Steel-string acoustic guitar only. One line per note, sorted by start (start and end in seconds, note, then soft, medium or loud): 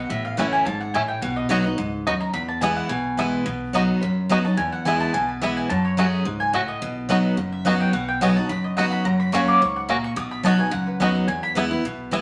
0.10 0.64 A2 medium
0.37 0.64 E3 medium
0.37 0.65 A3 loud
0.37 0.65 C#4 loud
0.37 0.66 E4 loud
0.66 0.93 G#2 medium
0.94 1.21 A2 medium
1.22 1.76 B2 medium
1.49 1.64 F#3 loud
1.49 1.65 B3 medium
1.49 1.65 D#4 loud
1.49 1.63 F#4 loud
1.64 1.79 D#4 medium
1.64 1.77 F#4 medium
1.78 2.05 G#2 medium
2.07 2.33 F#2 medium
2.33 2.87 E2 medium
2.61 2.89 E3 loud
2.61 2.89 G#3 loud
2.61 2.89 B3 loud
2.61 2.90 E4 loud
2.89 3.43 B2 medium
3.17 3.45 E3 medium
3.17 3.45 G#3 loud
3.17 3.45 B3 loud
3.17 3.46 E4 loud
3.46 3.99 B2 loud
3.73 4.01 F#3 loud
3.73 4.01 B3 loud
3.73 4.01 D#4 loud
3.73 4.02 F#4 loud
4.03 4.56 F#2 loud
4.29 4.44 F#3 medium
4.29 4.45 B3 loud
4.29 4.45 D#4 medium
4.29 4.44 F#4 medium
4.45 4.59 D#4 soft
4.45 4.58 F#4 medium
4.57 5.11 E2 medium
4.85 5.12 E3 loud
4.85 5.13 G#3 loud
4.85 5.13 B3 loud
4.85 5.14 E4 loud
5.14 5.68 B2 loud
5.42 5.69 E3 loud
5.42 5.69 G#3 loud
5.42 5.69 B3 medium
5.42 5.70 E4 loud
5.70 6.23 F#2 medium
5.97 6.24 F#3 loud
5.97 6.25 A3 loud
5.97 6.25 C#4 loud
5.97 6.25 G#4 loud
6.25 6.52 G#2 medium
6.54 6.80 A2 loud
6.82 7.35 B2 medium
7.09 7.36 F#3 loud
7.09 7.36 B3 loud
7.09 7.37 D#4 loud
7.09 7.37 F#4 loud
7.37 7.91 F#2 medium
7.65 7.92 F#3 loud
7.65 7.92 B3 medium
7.65 7.93 D#4 loud
7.65 7.93 F#4 loud
7.93 8.47 B2 medium
8.21 8.36 F#3 loud
8.21 8.36 B3 loud
8.21 8.37 D#4 loud
8.21 8.35 F#4 loud
8.37 8.50 D#4 medium
8.37 8.49 F#4 medium
8.49 9.03 F#2 medium
8.77 9.04 F#3 medium
8.77 9.04 B3 medium
8.77 9.05 D#4 medium
8.77 9.05 F#4 loud
9.05 9.59 F#2 medium
9.32 9.60 F#3 loud
9.32 9.60 A#3 loud
9.32 9.61 C#4 loud
9.32 9.61 F#4 loud
9.62 9.88 G#2 medium
9.89 10.16 A#2 medium
10.16 10.70 B2 loud
10.43 10.59 F#3 loud
10.43 10.59 B3 loud
10.43 10.59 D#4 loud
10.43 10.57 F#4 loud
10.58 10.73 D#4 medium
10.58 10.72 F#4 medium
10.71 11.25 F#2 loud
11.00 11.27 F#3 loud
11.00 11.27 B3 loud
11.00 11.28 D#4 loud
11.00 11.28 F#4 loud
11.28 11.82 E2 medium
11.55 11.70 E3 loud
11.55 11.71 G#3 loud
11.55 11.71 B3 loud
11.55 11.70 E4 loud
11.71 11.85 B3 medium
11.71 11.84 E4 medium
11.85 12.21 B2 loud
12.11 12.21 E3 medium
12.11 12.21 G#3 medium
12.11 12.21 B3 loud
12.11 12.21 E4 loud